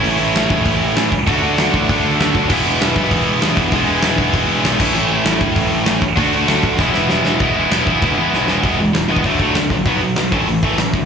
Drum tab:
CC |----------------|----------------|x---------------|--------------x-|
HH |o---o---o---o---|o---o---o---o---|----o---o---o---|o---o---o---o---|
SD |----o-------o---|----o-------o---|----o-------o---|----o-------o---|
BD |------o-o-----o-|o-----o-o-----o-|o-----o-o-----o-|o-----o-o-----o-|

CC |----------------|----------------|x---x---x-------|----------------|
HH |----o---o---o---|o---o-----------|----------------|o---o---o---o---|
SD |----o-------o---|----o---o-o-o-o-|----o-------o-o-|----o-------o---|
BD |------o-o-----o-|o-----o-o-------|o-----o-o-------|o------oo-o---o-|

CC |----------------|
HH |o---o---o---o---|
SD |----o-------o---|
BD |o-----o---o---o-|